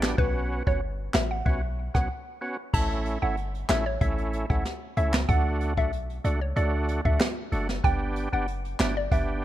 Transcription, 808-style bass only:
Already playing: A1
0.18 B1
0.67 G1
1.14 A1
1.46 B1
1.95 B1
2.74 A1
3.23 G1
3.69 A1
4.01 A1
4.50 A1
4.97 C#2
5.29 D2
5.77 B1
6.25 C#2
6.57 D2
7.05 D2
7.52 F#1
7.84 G1
8.33 F#1
8.80 G1
9.12 G1

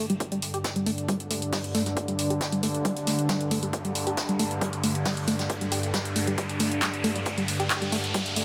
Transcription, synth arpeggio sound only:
0.10 G3
0.32 G3
0.54 G4
0.76 G3
0.86 A3
1.08 G3
1.30 A3
1.52 G3
1.75 A3
1.86 G3
2.08 G3
2.30 G4
2.52 G3
2.63 A3
2.85 G3
3.07 A3
3.29 G3
3.51 A3
3.63 G3
3.85 G3
4.07 G4
4.29 G3
4.39 A3
4.61 G3
4.84 A3
5.06 G3
5.28 A3
5.39 G3
5.61 G3
5.72 G4
5.94 G3
6.16 A3
6.27 G3
6.38 G3
6.60 A3
6.82 G3
7.04 A3
7.15 G3
7.38 G3
7.60 G4
7.82 G3
7.92 A3
8.14 G3
8.36 A3

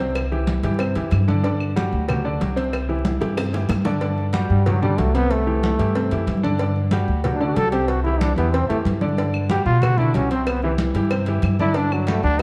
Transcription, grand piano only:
0.00 C3 C4 C5
0.31 E3 E4 G4
0.63 E3 E4 G4
0.79 C3 C4 C5
0.95 E3 E4 G4
1.28 D3 D4 D5
1.43 D3 D4 D5
1.76 G3 F#4 G4
2.08 F#3 F#4 G4
2.24 D3 D4 D5
2.41 F#3 F#4 G4
2.56 C3 C4 C5
2.89 E3 E4 G4
3.20 E3 E4 G4
3.37 C3 C4 C5
3.53 E3 E4 G4
3.85 D3 D4 D5
4.01 D3 D4 D5
4.33 G3 F#4 G4
4.66 F#3 F#4 G4
4.82 D3 D4 D5
4.98 F#3 F#4 G4
5.14 C3 C4 C5
5.46 E3 E4 G4
5.79 E3 E4 G4
5.95 C3 C4 C5
6.12 E3 E4 G4
6.43 D3 D4 D5
6.60 D3 D4 D5
6.92 G3 F#4 G4
7.25 F#3 F#4 G4
7.40 D3 D4 D5
7.56 F#3 F#4 G4
7.73 C3 C4 C5
8.06 E3 E4 G4
8.37 E3 E4 G4
8.53 C3 C4 C5
8.69 E3 E4 G4
9.01 D3 D4 D5
9.18 D3 D4 D5
9.50 G3 F#4 G4
9.82 F#3 F#4 G4
9.99 D3 D4 D5
10.14 F#3 F#4 G4
10.31 C3 C4 C5
10.63 E3 E4 G4
10.95 E3 E4 G4
11.11 C3 C4 C5
11.28 E3 E4 G4
11.60 D3 D4 D5
11.76 D3 D4 D5
12.08 G3 F#4 G4

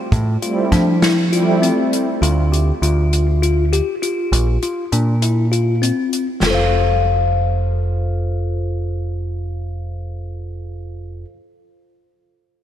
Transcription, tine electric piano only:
Already playing: F4
0.43 F4
0.72 D4
1.03 E4
1.33 F4
1.62 C4
2.22 F4
2.52 G4
2.82 F4
3.42 F4
3.73 G4
4.02 F4
4.63 F4
4.92 D4
5.22 E4
5.52 F4
5.82 C4
6.42 F4
6.47 A4 C5
6.55 F5

